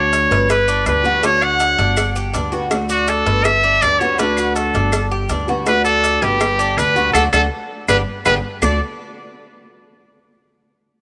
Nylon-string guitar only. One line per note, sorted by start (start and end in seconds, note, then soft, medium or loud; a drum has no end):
0.00 0.49 D3 medium
0.00 0.49 A3 medium
0.00 0.50 D4 medium
0.00 0.50 F#4 medium
0.50 muted nylon-string guitar stroke medium
0.86 1.04 D3 medium
0.86 1.04 G3 medium
0.86 1.03 B3 medium
0.86 1.02 G4 medium
1.03 1.21 D3 medium
1.03 1.23 G3 medium
1.03 1.22 B3 medium
1.03 1.22 G4 medium
1.23 1.96 D3 medium
1.23 1.97 A3 medium
1.23 1.98 D4 medium
1.23 1.98 F#4 medium
1.97 muted nylon-string guitar stroke medium
2.34 2.52 D3 soft
2.34 2.52 G3 soft
2.34 2.52 B3 medium
2.34 2.51 G4 medium
2.52 2.69 D3 medium
2.52 2.71 G3 medium
2.52 2.71 B3 medium
2.52 2.70 G4 medium
2.70 3.44 D3 medium
2.70 3.45 A3 medium
2.70 3.45 D4 medium
2.70 3.46 F#4 medium
3.45 muted nylon-string guitar stroke medium
3.83 4.00 D3 medium
3.83 4.00 G3 medium
3.83 4.00 B3 medium
3.83 3.99 G4 medium
4.01 4.17 D3 medium
4.01 4.19 G3 medium
4.01 4.19 B3 medium
4.01 4.18 G4 medium
4.18 4.92 D3 medium
4.18 4.93 A3 medium
4.18 4.94 D4 medium
4.18 4.94 F#4 medium
4.93 muted nylon-string guitar stroke medium
5.30 5.48 D3 medium
5.30 5.48 G3 medium
5.30 5.47 B3 medium
5.30 5.46 G4 medium
5.48 5.65 D3 medium
5.48 5.67 G3 medium
5.48 5.66 B3 medium
5.48 5.66 G4 medium
5.66 6.40 D3 medium
5.66 6.40 A3 medium
5.66 6.41 D4 medium
5.66 6.41 F#4 medium
6.41 muted nylon-string guitar stroke medium
6.77 6.95 D3 soft
6.77 6.96 G3 medium
6.77 6.95 B3 medium
6.77 6.94 G4 medium
6.95 7.14 D3 medium
6.95 7.14 G3 medium
6.95 7.14 B3 medium
6.95 7.14 G4 medium
7.14 7.27 F#3 loud
7.14 7.27 A3 medium
7.14 7.27 D4 medium
7.33 7.45 F#3 medium
7.33 7.45 A3 loud
7.33 7.45 D4 loud
7.88 8.01 D3 loud
7.88 8.01 G3 loud
7.88 8.01 B3 loud
8.26 8.38 D3 loud
8.26 8.38 G3 medium
8.26 8.38 B3 medium
8.62 8.77 D3 medium
8.62 8.78 A3 medium
8.62 8.78 D4 medium
8.62 8.78 F#4 medium